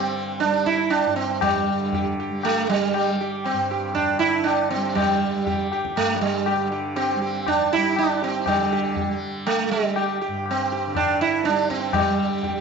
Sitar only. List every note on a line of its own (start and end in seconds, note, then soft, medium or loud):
0.00 0.40 C4 medium
0.40 0.66 D4 medium
0.66 0.92 E4 medium
0.90 1.15 D4 medium
1.16 1.42 C4 medium
1.42 2.14 G3 medium
1.94 2.17 G4 soft
2.20 2.42 G4 soft
2.45 2.69 A3 medium
2.69 3.16 G3 medium
3.21 3.43 G4 soft
3.45 3.97 C4 medium
3.71 3.94 G4 soft
3.95 4.19 D4 medium
4.19 4.46 E4 medium
4.44 4.70 D4 medium
4.70 4.97 C4 medium
4.95 5.67 G3 medium
5.47 5.70 G4 soft
5.73 5.95 G4 soft
5.97 6.15 A3 medium
6.16 6.21 A3 medium
6.21 6.68 G3 medium
6.47 6.70 G4 soft
6.72 6.95 G4 soft
6.96 7.47 C4 medium
6.96 7.20 G4 soft
7.22 7.45 G4 soft
7.48 7.73 D4 medium
7.72 7.95 E4 medium
7.72 7.95 G4 soft
7.98 8.23 D4 medium
8.22 8.48 C4 medium
8.22 8.45 G4 soft
8.47 9.18 G3 medium
8.72 8.95 G4 soft
9.46 9.71 A3 medium
9.71 10.17 G3 medium
9.97 10.19 G4 soft
10.21 10.44 G4 soft
10.51 10.99 C4 medium
10.72 10.94 G4 soft
10.96 11.21 D4 medium
11.21 11.46 E4 loud
11.45 11.68 D4 medium
11.70 11.95 C4 medium
11.94 12.61 G3 medium
12.44 12.61 G4 soft